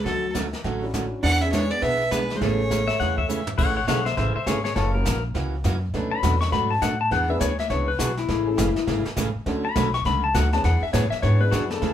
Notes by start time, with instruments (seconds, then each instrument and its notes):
0.05 upright bass D2, steel-string acoustic guitar D3 F#3 A3 C#4 F#4, hollow-body jazz guitar F#3, fiddle A4, brush sweep, kick, snare
0.34 steel-string acoustic guitar D3 F#3 A3 C#4 F#4, kick, snare, hi-hat pedal
0.53 snare
0.64 upright bass A1, steel-string acoustic guitar D3 F#3 A3 C#4 F#4, brush sweep, kick, snare
0.82 upright piano C#4 D4 E4 F#4
0.94 steel-string acoustic guitar D3 F#3 A3 C#4 F#4, kick, snare, hi-hat pedal
1.23 upright bass E2, steel-string acoustic guitar E3 B3 D4 G#4, hollow-body jazz guitar D4, fiddle F#5, brush sweep, kick, snare
1.40 upright piano B3 D4 E4 G#4, hollow-body jazz guitar C#4, fiddle E5
1.52 steel-string acoustic guitar E3 B3 D4 G#4, hollow-body jazz guitar G#3, fiddle C#5, kick, snare, hi-hat pedal
1.71 hollow-body jazz guitar B3, fiddle D5
1.82 upright bass B1, steel-string acoustic guitar E3 B3 D4 G#4, hollow-body jazz guitar B3, fiddle E5, brush sweep, kick, snare
2.11 steel-string acoustic guitar E3 B3 D4 G#4, hollow-body jazz guitar G#3, upright piano B3 D4 E4 G#4, fiddle B4, kick, snare, hi-hat pedal
2.30 snare
2.35 hollow-body jazz guitar G#3, fiddle C5
2.41 upright bass A1, steel-string acoustic guitar C#3 E3 A3 C#4 G#4, upright piano A3 B3 C#4 G#4, hollow-body jazz guitar A3, fiddle C#5, brush sweep, kick, snare
2.70 steel-string acoustic guitar C#3 E3 A3 C#4 G#4, kick, snare, hi-hat pedal
2.88 pedal steel guitar E5, snare
3.00 upright bass E2, steel-string acoustic guitar C#3 E3 A3 C#4 G#4, pedal steel guitar F#5, brush sweep, kick, snare
3.18 pedal steel guitar E5, kick
3.29 steel-string acoustic guitar C#3 E3 A3 C#4 G#4, pedal steel guitar E5, hi-hat pedal
3.47 floor tom
3.58 upright bass A1, steel-string acoustic guitar C#3 E3 A3 C#4 G#4, pedal steel guitar C#5 F#5, brush sweep, kick, snare, crash
3.76 pedal steel guitar C#5 F#5
3.87 upright bass B1, steel-string acoustic guitar C#3 E3 A3 C#4 G#4, upright piano A3 C#4 E4 G#4 A4, pedal steel guitar C#5 F#5, kick, snare, hi-hat pedal
4.05 pedal steel guitar C5 E5, snare
4.17 upright bass A1, steel-string acoustic guitar C#3 E3 A3 C#4 G#4, pedal steel guitar C5 E5, brush sweep, kick, snare
4.36 pedal steel guitar C5 E5
4.46 upright bass G#1, steel-string acoustic guitar C#3 E3 A3 C#4 G#4, pedal steel guitar G#4 C#5, kick, snare, hi-hat pedal
4.64 pedal steel guitar G#4 C#5, snare
4.75 upright bass F#1, steel-string acoustic guitar C#3 E3 A#3 C#4 F#4, pedal steel guitar A4 C#5, brush sweep, kick, snare
4.94 upright piano A#3 C#4 E4 F#4 A#4, pedal steel guitar A#4
5.05 upright bass A#1, steel-string acoustic guitar C#3 E3 A#3 C#4 F#4, kick, snare, hi-hat pedal
5.34 upright bass C#2, steel-string acoustic guitar C#3 E3 A#3 C#4 F#4, brush sweep, kick, snare
5.64 upright bass F#2, steel-string acoustic guitar C#3 E3 A#3 C#4 F#4, kick, snare, hi-hat pedal
5.94 upright bass D2, steel-string acoustic guitar B2 F#3 A3 D4 F#4, upright piano C#4 D4 E4 A4 B4, brush sweep, kick, snare
6.11 pedal steel guitar B5
6.23 upright bass E2, steel-string acoustic guitar B2 F#3 A3 D4 F#4, kick, snare, hi-hat pedal
6.41 pedal steel guitar C#6, snare
6.52 upright bass G#2, steel-string acoustic guitar B2 F#3 A3 D4 F#4, pedal steel guitar B5, brush sweep, kick, snare
6.71 pedal steel guitar A5
6.81 upright bass A2, steel-string acoustic guitar B2 F#3 A3 D4 F#4, pedal steel guitar F#5, kick, snare, hi-hat pedal
7.01 pedal steel guitar A5
7.11 upright bass E2, steel-string acoustic guitar E3 B3 D4 G#4, pedal steel guitar F#5, brush sweep, kick, snare
7.29 upright piano B3 D4 E4 G#4 B4, pedal steel guitar E5
7.40 upright bass D2, steel-string acoustic guitar E3 B3 D4 G#4, pedal steel guitar C#5, kick, snare, hi-hat pedal
7.59 pedal steel guitar E5, snare
7.70 upright bass C#2, steel-string acoustic guitar E3 B3 D4 G#4, pedal steel guitar C#5, brush sweep, kick, snare
7.88 pedal steel guitar B4
7.99 upright bass B1, steel-string acoustic guitar E3 B3 D4 G#4, pedal steel guitar F#4, kick, snare, hi-hat pedal
8.17 pedal steel guitar E4, snare
8.28 upright bass A1, steel-string acoustic guitar C#3 E3 A3 C#4 G#4, brush sweep, kick, snare
8.46 upright piano A3 C#4 E4 G#4 A4
8.57 upright bass F#1, steel-string acoustic guitar C#3 E3 A3 C#4 G#4, kick, snare, hi-hat pedal
8.76 muted upright bass stroke, snare
8.87 upright bass G#1, steel-string acoustic guitar C#3 E3 A3 C#4 G#4, brush sweep, kick, snare
9.05 muted upright bass stroke, snare
9.16 upright bass A1, steel-string acoustic guitar C#3 E3 A3 C#4 G#4, kick, snare, hi-hat pedal
9.35 muted upright bass stroke
9.46 upright bass D2, steel-string acoustic guitar D3 F#3 A3 C#4 F#4, upright piano C#4 D4 E4 F#4 A4, brush sweep, kick, snare
9.65 pedal steel guitar B5
9.76 upright bass B1, steel-string acoustic guitar D3 F#3 A3 C#4 F#4, kick, snare, hi-hat pedal
9.94 pedal steel guitar C#6, snare
10.05 upright bass C#2, steel-string acoustic guitar D3 F#3 A3 C#4 F#4, pedal steel guitar B5, brush sweep, kick, snare
10.24 pedal steel guitar A5
10.34 upright bass D2, steel-string acoustic guitar D3 F#3 A3 C#4 F#4, pedal steel guitar F#5, kick, snare, hi-hat pedal
10.53 upright piano B3 D4 E4 G#4 C#5, pedal steel guitar A5, snare
10.64 upright bass E2, steel-string acoustic guitar E3 B3 D4 G#4, pedal steel guitar F#5, brush sweep, kick, snare
10.82 pedal steel guitar E5, muted upright bass stroke
10.93 upright bass A2, steel-string acoustic guitar E3 B3 D4 G#4, pedal steel guitar C#5, kick, snare, hi-hat pedal
11.10 pedal steel guitar E5, muted upright bass stroke, snare
11.22 upright bass G#2, steel-string acoustic guitar E3 B3 D4 G#4, pedal steel guitar C#5, brush sweep, kick, snare
11.40 upright piano B3 D4 E4 G#4 B4, pedal steel guitar B4
11.51 upright bass F#2, steel-string acoustic guitar E3 B3 D4 G#4, pedal steel guitar F#4, kick, snare, hi-hat pedal
11.70 pedal steel guitar A4, snare
11.82 upright bass E2, steel-string acoustic guitar C#3 E3 A3 C#4 G#4, brush sweep, kick, snare